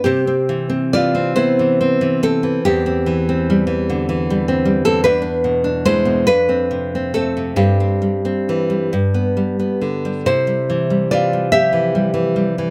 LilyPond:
\new Staff \with { instrumentName = "Nylon-string guitar" } { \time 6/8 \key c \major \tempo 4. = 47 << { <c' g'>4 <f' d''>8 <e' c''>4 <c' a'>8 | <c' g'>2~ <c' g'>8. <c' a'>16 | <d' b'>4 <e' c''>8 <d' b'>4 <c' a'>8 | <c' g'>2~ <c' g'>8 r8 |
<e' c''>4 <f' d''>8 <g' e''>4. | } \\ { c16 c'16 e16 c'16 e16 c'16 b16 e16 c'16 e8 e16 | e,16 c'16 e16 c'16 g16 e16 d16 e16 g16 c'16 g16 e16 | e,16 d'16 b,16 d'16 gis16 b,16 f,16 c'16 c16 c'16 a16 c16 | g,16 c'16 g16 c'16 e16 g16 g,16 b16 g16 b16 d16 g16 |
c16 g16 e16 g16 e16 g16 f16 e16 g16 e16 g16 e16 | } >> }